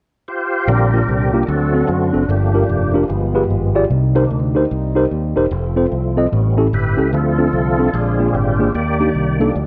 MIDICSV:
0, 0, Header, 1, 5, 480
1, 0, Start_track
1, 0, Key_signature, -2, "major"
1, 0, Tempo, 403497
1, 802, Time_signature, 4, 2, 24, 8
1, 11497, End_track
2, 0, Start_track
2, 0, Title_t, "Tine electric piano"
2, 0, Program_c, 0, 4
2, 806, Note_on_c, 0, 46, 58
2, 1106, Note_on_c, 0, 58, 65
2, 1113, Note_on_c, 0, 62, 57
2, 1118, Note_on_c, 0, 65, 63
2, 1121, Note_on_c, 0, 67, 70
2, 1200, Note_off_c, 0, 58, 0
2, 1204, Note_off_c, 0, 62, 0
2, 1206, Note_off_c, 0, 65, 0
2, 1208, Note_off_c, 0, 67, 0
2, 1541, Note_off_c, 0, 46, 0
2, 1586, Note_on_c, 0, 58, 82
2, 1590, Note_on_c, 0, 62, 69
2, 1591, Note_on_c, 0, 65, 73
2, 1600, Note_on_c, 0, 67, 86
2, 1680, Note_off_c, 0, 58, 0
2, 1682, Note_off_c, 0, 62, 0
2, 1682, Note_off_c, 0, 65, 0
2, 1687, Note_off_c, 0, 67, 0
2, 1766, Note_on_c, 0, 50, 57
2, 2066, Note_on_c, 0, 60, 66
2, 2071, Note_on_c, 0, 62, 67
2, 2074, Note_on_c, 0, 66, 62
2, 2076, Note_on_c, 0, 69, 73
2, 2159, Note_off_c, 0, 60, 0
2, 2162, Note_off_c, 0, 62, 0
2, 2163, Note_off_c, 0, 66, 0
2, 2164, Note_off_c, 0, 69, 0
2, 2501, Note_off_c, 0, 50, 0
2, 2533, Note_on_c, 0, 60, 74
2, 2537, Note_on_c, 0, 62, 62
2, 2543, Note_on_c, 0, 66, 61
2, 2543, Note_on_c, 0, 69, 75
2, 2633, Note_off_c, 0, 60, 0
2, 2635, Note_off_c, 0, 62, 0
2, 2638, Note_off_c, 0, 66, 0
2, 2638, Note_off_c, 0, 69, 0
2, 2711, Note_on_c, 0, 43, 56
2, 3021, Note_on_c, 0, 62, 64
2, 3023, Note_on_c, 0, 65, 65
2, 3028, Note_on_c, 0, 67, 58
2, 3032, Note_on_c, 0, 70, 77
2, 3117, Note_off_c, 0, 62, 0
2, 3118, Note_off_c, 0, 65, 0
2, 3120, Note_off_c, 0, 67, 0
2, 3122, Note_off_c, 0, 70, 0
2, 3454, Note_off_c, 0, 43, 0
2, 3499, Note_on_c, 0, 62, 79
2, 3501, Note_on_c, 0, 65, 71
2, 3511, Note_on_c, 0, 67, 68
2, 3512, Note_on_c, 0, 70, 77
2, 3596, Note_off_c, 0, 62, 0
2, 3597, Note_off_c, 0, 65, 0
2, 3602, Note_off_c, 0, 67, 0
2, 3602, Note_off_c, 0, 70, 0
2, 3677, Note_on_c, 0, 43, 69
2, 3983, Note_on_c, 0, 65, 82
2, 3986, Note_on_c, 0, 67, 76
2, 3987, Note_on_c, 0, 68, 75
2, 3993, Note_on_c, 0, 71, 90
2, 4078, Note_off_c, 0, 65, 0
2, 4080, Note_off_c, 0, 67, 0
2, 4080, Note_off_c, 0, 68, 0
2, 4083, Note_off_c, 0, 71, 0
2, 4417, Note_off_c, 0, 43, 0
2, 4463, Note_on_c, 0, 65, 83
2, 4467, Note_on_c, 0, 67, 73
2, 4468, Note_on_c, 0, 68, 78
2, 4473, Note_on_c, 0, 74, 95
2, 4558, Note_off_c, 0, 65, 0
2, 4560, Note_off_c, 0, 67, 0
2, 4561, Note_off_c, 0, 68, 0
2, 4563, Note_off_c, 0, 74, 0
2, 4638, Note_on_c, 0, 48, 67
2, 4939, Note_on_c, 0, 63, 81
2, 4940, Note_on_c, 0, 67, 71
2, 4947, Note_on_c, 0, 70, 76
2, 4951, Note_on_c, 0, 72, 93
2, 5036, Note_off_c, 0, 63, 0
2, 5037, Note_off_c, 0, 67, 0
2, 5040, Note_off_c, 0, 70, 0
2, 5042, Note_off_c, 0, 72, 0
2, 5379, Note_off_c, 0, 48, 0
2, 5412, Note_on_c, 0, 63, 79
2, 5416, Note_on_c, 0, 67, 68
2, 5424, Note_on_c, 0, 70, 71
2, 5429, Note_on_c, 0, 72, 90
2, 5513, Note_off_c, 0, 63, 0
2, 5515, Note_off_c, 0, 67, 0
2, 5519, Note_off_c, 0, 70, 0
2, 5522, Note_off_c, 0, 72, 0
2, 5894, Note_on_c, 0, 63, 82
2, 5899, Note_on_c, 0, 67, 74
2, 5904, Note_on_c, 0, 70, 79
2, 5907, Note_on_c, 0, 72, 92
2, 5994, Note_off_c, 0, 63, 0
2, 5997, Note_off_c, 0, 67, 0
2, 5999, Note_off_c, 0, 70, 0
2, 6001, Note_off_c, 0, 72, 0
2, 6378, Note_on_c, 0, 63, 83
2, 6384, Note_on_c, 0, 67, 75
2, 6386, Note_on_c, 0, 70, 74
2, 6391, Note_on_c, 0, 72, 90
2, 6477, Note_off_c, 0, 63, 0
2, 6480, Note_off_c, 0, 67, 0
2, 6481, Note_off_c, 0, 70, 0
2, 6483, Note_off_c, 0, 72, 0
2, 6855, Note_on_c, 0, 60, 79
2, 6860, Note_on_c, 0, 65, 73
2, 6863, Note_on_c, 0, 69, 73
2, 6868, Note_on_c, 0, 72, 84
2, 6956, Note_off_c, 0, 60, 0
2, 6958, Note_off_c, 0, 65, 0
2, 6960, Note_off_c, 0, 69, 0
2, 6962, Note_off_c, 0, 72, 0
2, 7340, Note_on_c, 0, 60, 78
2, 7346, Note_on_c, 0, 65, 66
2, 7346, Note_on_c, 0, 69, 75
2, 7353, Note_on_c, 0, 75, 82
2, 7438, Note_off_c, 0, 60, 0
2, 7441, Note_off_c, 0, 65, 0
2, 7441, Note_off_c, 0, 69, 0
2, 7445, Note_off_c, 0, 75, 0
2, 7520, Note_on_c, 0, 45, 71
2, 7817, Note_on_c, 0, 61, 75
2, 7821, Note_on_c, 0, 64, 76
2, 7825, Note_on_c, 0, 67, 70
2, 7826, Note_on_c, 0, 69, 90
2, 7918, Note_off_c, 0, 61, 0
2, 7919, Note_off_c, 0, 64, 0
2, 7921, Note_off_c, 0, 67, 0
2, 7922, Note_off_c, 0, 69, 0
2, 8262, Note_off_c, 0, 45, 0
2, 8295, Note_on_c, 0, 61, 72
2, 8300, Note_on_c, 0, 64, 62
2, 8304, Note_on_c, 0, 67, 64
2, 8309, Note_on_c, 0, 69, 76
2, 8397, Note_off_c, 0, 61, 0
2, 8399, Note_off_c, 0, 64, 0
2, 8401, Note_off_c, 0, 67, 0
2, 8404, Note_off_c, 0, 69, 0
2, 8476, Note_on_c, 0, 50, 61
2, 8782, Note_on_c, 0, 60, 65
2, 8784, Note_on_c, 0, 62, 63
2, 8788, Note_on_c, 0, 65, 60
2, 8790, Note_on_c, 0, 69, 70
2, 8880, Note_off_c, 0, 60, 0
2, 8881, Note_off_c, 0, 62, 0
2, 8883, Note_off_c, 0, 65, 0
2, 8884, Note_off_c, 0, 69, 0
2, 9220, Note_off_c, 0, 50, 0
2, 9254, Note_on_c, 0, 60, 78
2, 9266, Note_on_c, 0, 62, 71
2, 9266, Note_on_c, 0, 65, 67
2, 9271, Note_on_c, 0, 69, 89
2, 9357, Note_off_c, 0, 60, 0
2, 9362, Note_off_c, 0, 62, 0
2, 9363, Note_off_c, 0, 65, 0
2, 9365, Note_off_c, 0, 69, 0
2, 9441, Note_on_c, 0, 46, 58
2, 9744, Note_on_c, 0, 58, 67
2, 9744, Note_on_c, 0, 62, 61
2, 9748, Note_on_c, 0, 65, 62
2, 9752, Note_on_c, 0, 68, 77
2, 9841, Note_off_c, 0, 62, 0
2, 9842, Note_off_c, 0, 58, 0
2, 9844, Note_off_c, 0, 65, 0
2, 9845, Note_off_c, 0, 68, 0
2, 10182, Note_off_c, 0, 46, 0
2, 10221, Note_on_c, 0, 58, 71
2, 10225, Note_on_c, 0, 62, 62
2, 10228, Note_on_c, 0, 65, 62
2, 10234, Note_on_c, 0, 68, 79
2, 10320, Note_off_c, 0, 58, 0
2, 10322, Note_off_c, 0, 62, 0
2, 10324, Note_off_c, 0, 65, 0
2, 10327, Note_off_c, 0, 68, 0
2, 10400, Note_on_c, 0, 51, 60
2, 10705, Note_on_c, 0, 58, 68
2, 10705, Note_on_c, 0, 62, 59
2, 10708, Note_on_c, 0, 63, 60
2, 10715, Note_on_c, 0, 67, 78
2, 10802, Note_off_c, 0, 58, 0
2, 10802, Note_off_c, 0, 62, 0
2, 10804, Note_off_c, 0, 63, 0
2, 10808, Note_off_c, 0, 67, 0
2, 11143, Note_off_c, 0, 51, 0
2, 11178, Note_on_c, 0, 58, 80
2, 11183, Note_on_c, 0, 62, 66
2, 11190, Note_on_c, 0, 63, 70
2, 11192, Note_on_c, 0, 69, 89
2, 11279, Note_off_c, 0, 58, 0
2, 11281, Note_off_c, 0, 62, 0
2, 11285, Note_off_c, 0, 63, 0
2, 11286, Note_off_c, 0, 69, 0
2, 11497, End_track
3, 0, Start_track
3, 0, Title_t, "Tonewheel organ"
3, 0, Program_c, 1, 16
3, 333, Note_on_c, 1, 72, 98
3, 335, Note_on_c, 1, 65, 66
3, 338, Note_on_c, 1, 67, 72
3, 812, Note_off_c, 1, 67, 0
3, 812, Note_on_c, 1, 70, 89
3, 815, Note_on_c, 1, 50, 46
3, 819, Note_on_c, 1, 55, 42
3, 821, Note_off_c, 1, 72, 0
3, 823, Note_on_c, 1, 62, 58
3, 827, Note_on_c, 1, 60, 55
3, 827, Note_on_c, 1, 67, 57
3, 1240, Note_off_c, 1, 65, 0
3, 1554, Note_off_c, 1, 50, 0
3, 1556, Note_off_c, 1, 55, 0
3, 1561, Note_off_c, 1, 60, 0
3, 1690, Note_off_c, 1, 70, 0
3, 1705, Note_on_c, 1, 70, 59
3, 1724, Note_off_c, 1, 62, 0
3, 1725, Note_off_c, 1, 67, 0
3, 1752, Note_on_c, 1, 54, 48
3, 1763, Note_off_c, 1, 70, 0
3, 1766, Note_on_c, 1, 57, 44
3, 1768, Note_on_c, 1, 60, 61
3, 1771, Note_on_c, 1, 69, 86
3, 1773, Note_on_c, 1, 66, 61
3, 2216, Note_off_c, 1, 66, 0
3, 2217, Note_off_c, 1, 57, 0
3, 2223, Note_off_c, 1, 60, 0
3, 2230, Note_on_c, 1, 66, 76
3, 2232, Note_on_c, 1, 57, 57
3, 2237, Note_on_c, 1, 60, 60
3, 2260, Note_off_c, 1, 69, 0
3, 2668, Note_off_c, 1, 54, 0
3, 2682, Note_off_c, 1, 57, 0
3, 2685, Note_off_c, 1, 60, 0
3, 2728, Note_on_c, 1, 53, 48
3, 2730, Note_off_c, 1, 66, 0
3, 2735, Note_on_c, 1, 57, 47
3, 2735, Note_on_c, 1, 62, 48
3, 2740, Note_on_c, 1, 58, 55
3, 2745, Note_on_c, 1, 67, 67
3, 3471, Note_off_c, 1, 67, 0
3, 3636, Note_off_c, 1, 53, 0
3, 3640, Note_off_c, 1, 57, 0
3, 3640, Note_off_c, 1, 62, 0
3, 3644, Note_off_c, 1, 58, 0
3, 3666, Note_on_c, 1, 53, 49
3, 3680, Note_on_c, 1, 56, 45
3, 3687, Note_on_c, 1, 59, 53
3, 4586, Note_off_c, 1, 53, 0
3, 4593, Note_off_c, 1, 56, 0
3, 4597, Note_off_c, 1, 59, 0
3, 4947, Note_on_c, 1, 51, 51
3, 4956, Note_on_c, 1, 58, 48
3, 4964, Note_on_c, 1, 62, 59
3, 5229, Note_off_c, 1, 51, 0
3, 5234, Note_off_c, 1, 58, 0
3, 5238, Note_off_c, 1, 62, 0
3, 6557, Note_on_c, 1, 53, 51
3, 6563, Note_on_c, 1, 57, 45
3, 6580, Note_on_c, 1, 60, 55
3, 7474, Note_off_c, 1, 53, 0
3, 7477, Note_off_c, 1, 57, 0
3, 7485, Note_off_c, 1, 60, 0
3, 7529, Note_on_c, 1, 59, 48
3, 7531, Note_on_c, 1, 55, 53
3, 7538, Note_on_c, 1, 61, 55
3, 7884, Note_off_c, 1, 59, 0
3, 7885, Note_off_c, 1, 55, 0
3, 7889, Note_off_c, 1, 61, 0
3, 8018, Note_on_c, 1, 64, 71
3, 8019, Note_on_c, 1, 67, 67
3, 8021, Note_on_c, 1, 71, 92
3, 8459, Note_off_c, 1, 64, 0
3, 8459, Note_off_c, 1, 67, 0
3, 8482, Note_on_c, 1, 53, 52
3, 8490, Note_on_c, 1, 57, 45
3, 8498, Note_on_c, 1, 65, 59
3, 8501, Note_on_c, 1, 60, 60
3, 8501, Note_on_c, 1, 69, 87
3, 8508, Note_off_c, 1, 71, 0
3, 9397, Note_off_c, 1, 53, 0
3, 9401, Note_off_c, 1, 57, 0
3, 9405, Note_off_c, 1, 65, 0
3, 9407, Note_off_c, 1, 60, 0
3, 9443, Note_on_c, 1, 56, 48
3, 9444, Note_on_c, 1, 50, 51
3, 9452, Note_on_c, 1, 68, 82
3, 9455, Note_on_c, 1, 60, 55
3, 9455, Note_on_c, 1, 62, 59
3, 9458, Note_on_c, 1, 65, 59
3, 9483, Note_off_c, 1, 69, 0
3, 9918, Note_off_c, 1, 62, 0
3, 9931, Note_on_c, 1, 67, 80
3, 9933, Note_on_c, 1, 62, 58
3, 9944, Note_off_c, 1, 68, 0
3, 10358, Note_off_c, 1, 50, 0
3, 10358, Note_off_c, 1, 56, 0
3, 10364, Note_off_c, 1, 60, 0
3, 10365, Note_off_c, 1, 65, 0
3, 10376, Note_off_c, 1, 67, 0
3, 10377, Note_off_c, 1, 62, 0
3, 10407, Note_on_c, 1, 67, 69
3, 10412, Note_on_c, 1, 74, 49
3, 10418, Note_on_c, 1, 58, 47
3, 11146, Note_off_c, 1, 67, 0
3, 11191, Note_on_c, 1, 53, 50
3, 11196, Note_on_c, 1, 55, 46
3, 11213, Note_on_c, 1, 62, 59
3, 11322, Note_off_c, 1, 74, 0
3, 11325, Note_off_c, 1, 58, 0
3, 11474, Note_off_c, 1, 53, 0
3, 11477, Note_off_c, 1, 55, 0
3, 11485, Note_off_c, 1, 62, 0
3, 11497, End_track
4, 0, Start_track
4, 0, Title_t, "French horn section"
4, 0, Program_c, 2, 60
4, 810, Note_on_c, 2, 55, 58
4, 810, Note_on_c, 2, 62, 74
4, 812, Note_on_c, 2, 53, 59
4, 812, Note_on_c, 2, 58, 56
4, 1755, Note_off_c, 2, 55, 0
4, 1755, Note_off_c, 2, 62, 0
4, 1756, Note_off_c, 2, 53, 0
4, 1756, Note_off_c, 2, 58, 0
4, 1766, Note_on_c, 2, 57, 63
4, 1768, Note_on_c, 2, 62, 79
4, 1770, Note_on_c, 2, 54, 70
4, 1771, Note_on_c, 2, 60, 59
4, 2713, Note_off_c, 2, 57, 0
4, 2715, Note_off_c, 2, 54, 0
4, 2716, Note_off_c, 2, 60, 0
4, 2726, Note_on_c, 2, 55, 69
4, 2731, Note_on_c, 2, 65, 80
4, 2732, Note_on_c, 2, 53, 57
4, 3664, Note_off_c, 2, 62, 0
4, 3674, Note_off_c, 2, 55, 0
4, 3676, Note_off_c, 2, 53, 0
4, 3693, Note_on_c, 2, 56, 66
4, 3695, Note_on_c, 2, 59, 64
4, 3696, Note_on_c, 2, 67, 76
4, 4627, Note_off_c, 2, 65, 0
4, 4638, Note_off_c, 2, 56, 0
4, 4639, Note_off_c, 2, 59, 0
4, 4639, Note_off_c, 2, 67, 0
4, 4645, Note_on_c, 2, 58, 65
4, 4650, Note_on_c, 2, 55, 69
4, 4653, Note_on_c, 2, 60, 64
4, 4654, Note_on_c, 2, 63, 75
4, 6546, Note_off_c, 2, 58, 0
4, 6549, Note_off_c, 2, 55, 0
4, 6551, Note_off_c, 2, 63, 0
4, 6579, Note_on_c, 2, 65, 70
4, 6581, Note_on_c, 2, 53, 61
4, 6586, Note_on_c, 2, 57, 62
4, 7502, Note_off_c, 2, 60, 0
4, 7514, Note_on_c, 2, 55, 65
4, 7514, Note_on_c, 2, 64, 71
4, 7515, Note_on_c, 2, 61, 62
4, 7523, Note_off_c, 2, 65, 0
4, 7524, Note_off_c, 2, 53, 0
4, 8470, Note_off_c, 2, 55, 0
4, 8471, Note_off_c, 2, 61, 0
4, 8471, Note_off_c, 2, 64, 0
4, 8494, Note_on_c, 2, 53, 70
4, 8495, Note_on_c, 2, 60, 62
4, 8495, Note_on_c, 2, 62, 71
4, 9429, Note_off_c, 2, 57, 0
4, 9441, Note_off_c, 2, 60, 0
4, 9458, Note_on_c, 2, 56, 62
4, 9460, Note_on_c, 2, 58, 67
4, 10392, Note_off_c, 2, 53, 0
4, 10393, Note_off_c, 2, 62, 0
4, 10403, Note_off_c, 2, 56, 0
4, 10409, Note_on_c, 2, 62, 81
4, 10410, Note_on_c, 2, 63, 71
4, 10411, Note_on_c, 2, 55, 61
4, 11497, Note_off_c, 2, 55, 0
4, 11497, Note_off_c, 2, 58, 0
4, 11497, Note_off_c, 2, 62, 0
4, 11497, Note_off_c, 2, 63, 0
4, 11497, End_track
5, 0, Start_track
5, 0, Title_t, "Fingered electric bass"
5, 0, Program_c, 3, 33
5, 803, Note_on_c, 3, 34, 91
5, 1210, Note_off_c, 3, 34, 0
5, 1285, Note_on_c, 3, 36, 77
5, 1691, Note_off_c, 3, 36, 0
5, 1766, Note_on_c, 3, 38, 98
5, 2171, Note_off_c, 3, 38, 0
5, 2243, Note_on_c, 3, 42, 84
5, 2502, Note_off_c, 3, 42, 0
5, 2551, Note_on_c, 3, 30, 74
5, 2697, Note_off_c, 3, 30, 0
5, 2721, Note_on_c, 3, 31, 91
5, 3129, Note_off_c, 3, 31, 0
5, 3205, Note_on_c, 3, 29, 85
5, 3611, Note_off_c, 3, 29, 0
5, 3683, Note_on_c, 3, 31, 96
5, 4090, Note_off_c, 3, 31, 0
5, 4168, Note_on_c, 3, 32, 76
5, 4573, Note_off_c, 3, 32, 0
5, 4646, Note_on_c, 3, 36, 94
5, 5052, Note_off_c, 3, 36, 0
5, 5121, Note_on_c, 3, 38, 85
5, 5530, Note_off_c, 3, 38, 0
5, 5605, Note_on_c, 3, 36, 90
5, 6012, Note_off_c, 3, 36, 0
5, 6082, Note_on_c, 3, 39, 82
5, 6343, Note_off_c, 3, 39, 0
5, 6387, Note_on_c, 3, 28, 76
5, 6536, Note_off_c, 3, 28, 0
5, 6558, Note_on_c, 3, 29, 96
5, 6969, Note_off_c, 3, 29, 0
5, 7039, Note_on_c, 3, 36, 89
5, 7450, Note_off_c, 3, 36, 0
5, 7525, Note_on_c, 3, 33, 88
5, 7933, Note_off_c, 3, 33, 0
5, 8006, Note_on_c, 3, 31, 90
5, 8266, Note_off_c, 3, 31, 0
5, 8306, Note_on_c, 3, 37, 75
5, 8456, Note_off_c, 3, 37, 0
5, 8479, Note_on_c, 3, 38, 100
5, 8890, Note_off_c, 3, 38, 0
5, 8955, Note_on_c, 3, 36, 90
5, 9368, Note_off_c, 3, 36, 0
5, 9441, Note_on_c, 3, 34, 99
5, 9852, Note_off_c, 3, 34, 0
5, 9924, Note_on_c, 3, 32, 85
5, 10333, Note_off_c, 3, 32, 0
5, 10402, Note_on_c, 3, 39, 101
5, 10812, Note_off_c, 3, 39, 0
5, 10882, Note_on_c, 3, 36, 79
5, 11292, Note_off_c, 3, 36, 0
5, 11367, Note_on_c, 3, 38, 85
5, 11497, Note_off_c, 3, 38, 0
5, 11497, End_track
0, 0, End_of_file